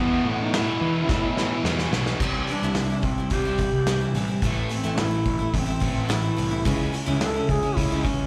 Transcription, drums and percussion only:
0.54 snare loud
0.54 crash medium
1.09 kick loud
1.09 snare medium
1.37 snare medium
1.65 snare loud
1.79 snare medium
1.93 snare loud
2.06 snare medium
2.20 kick loud
2.20 crash loud
2.47 open hi-hat soft
2.75 snare loud
2.75 open hi-hat medium
3.02 kick medium
3.02 open hi-hat soft
3.30 kick medium
3.30 open hi-hat medium
3.58 kick medium
3.58 open hi-hat soft
3.87 snare loud
3.87 open hi-hat medium
4.15 open hi-hat medium
4.42 kick medium
4.42 open hi-hat medium
4.70 open hi-hat soft
4.98 snare loud
4.98 open hi-hat medium
5.25 kick medium
5.25 open hi-hat medium
5.54 kick medium
5.54 open hi-hat medium
5.81 kick medium
5.81 open hi-hat medium
6.10 snare loud
6.10 open hi-hat medium
6.38 open hi-hat medium
6.65 kick loud
6.65 open hi-hat medium
6.94 open hi-hat medium
7.21 snare loud
7.21 open hi-hat medium
7.49 kick medium
7.49 open hi-hat soft
7.77 kick medium
7.77 open hi-hat medium
8.05 kick medium
8.05 open hi-hat medium

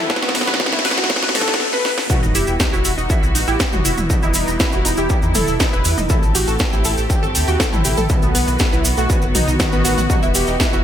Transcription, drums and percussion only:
0.10 kick loud
0.10 snare loud
0.16 snare medium
0.23 snare medium
0.29 snare medium
0.35 snare loud
0.35 open hi-hat loud
0.41 snare medium
0.47 snare medium
0.54 snare medium
0.60 kick loud
0.60 snare loud
0.66 snare medium
0.73 snare medium
0.79 snare medium
0.85 snare loud
0.85 open hi-hat loud
0.91 snare medium
0.98 snare medium
1.04 snare medium
1.10 kick loud
1.10 snare loud
1.16 snare loud
1.23 snare loud
1.29 snare medium
1.35 snare loud
1.35 mid tom medium
1.35 open hi-hat loud
1.41 snare loud
1.48 snare loud
1.54 snare loud
1.60 snare medium
1.73 snare medium
1.85 snare medium
1.98 snare medium
2.10 kick loud
2.10 cabasa medium
2.23 cabasa soft
2.35 open hi-hat loud
2.35 cabasa medium
2.47 cabasa soft
2.60 kick loud
2.60 snare loud
2.60 cabasa medium
2.73 cabasa soft
2.85 open hi-hat loud
2.85 cabasa medium
2.98 cabasa soft
3.10 kick loud
3.10 cabasa medium
3.23 cabasa soft
3.35 open hi-hat loud
3.35 cabasa medium
3.47 cabasa soft
3.60 kick loud
3.60 snare loud
3.60 cabasa medium
3.73 mid tom loud
3.73 cabasa soft
3.85 open hi-hat loud
3.85 cabasa loud
3.98 mid tom medium
3.98 cabasa soft
4.10 kick loud
4.10 cabasa medium
4.23 cabasa soft
4.34 open hi-hat loud
4.34 cabasa loud
4.48 cabasa soft
4.60 kick loud
4.60 snare loud
4.60 cabasa medium
4.72 cabasa soft
4.85 open hi-hat loud
4.85 cabasa loud
4.97 cabasa soft
5.10 kick loud
5.10 cabasa medium
5.22 cabasa soft
5.35 mid tom medium
5.35 open hi-hat loud
5.35 cabasa loud
5.48 cabasa soft
5.60 kick loud
5.60 snare loud
5.60 cabasa medium
5.73 cabasa soft
5.85 open hi-hat loud
5.85 cabasa medium
5.98 mid tom medium
5.98 cabasa soft
6.09 kick loud
6.09 cabasa medium
6.23 cabasa soft
6.35 open hi-hat loud
6.35 cabasa loud
6.47 cabasa soft
6.59 kick loud
6.59 snare loud
6.59 cabasa medium
6.73 cabasa soft
6.85 open hi-hat loud
6.85 cabasa loud
6.98 cabasa soft
7.10 kick loud
7.10 cabasa medium
7.23 cabasa soft
7.35 open hi-hat loud
7.35 cabasa loud
7.48 cabasa soft
7.60 kick loud
7.60 snare loud
7.60 cabasa medium
7.73 mid tom medium
7.73 cabasa soft
7.85 open hi-hat loud
7.85 cabasa loud
7.97 mid tom medium
7.97 cabasa soft
8.09 kick loud
8.09 cabasa soft
8.22 cabasa soft
8.35 open hi-hat loud
8.35 cabasa loud
8.48 cabasa soft
8.59 kick loud
8.59 snare loud
8.59 cabasa medium
8.73 cabasa soft
8.85 open hi-hat loud
8.85 cabasa loud
8.97 cabasa soft
9.10 kick loud
9.10 cabasa medium
9.22 cabasa soft
9.35 mid tom medium
9.35 open hi-hat loud
9.35 cabasa loud
9.48 cabasa soft
9.60 kick loud
9.60 snare loud
9.60 cabasa medium
9.72 cabasa soft
9.85 open hi-hat loud
9.85 cabasa loud
9.98 mid tom medium
9.98 cabasa soft
10.10 kick loud
10.10 cabasa medium
10.23 cabasa soft
10.35 open hi-hat loud
10.35 cabasa loud
10.47 cabasa soft
10.60 kick loud
10.60 snare loud
10.60 cabasa medium
10.73 cabasa soft

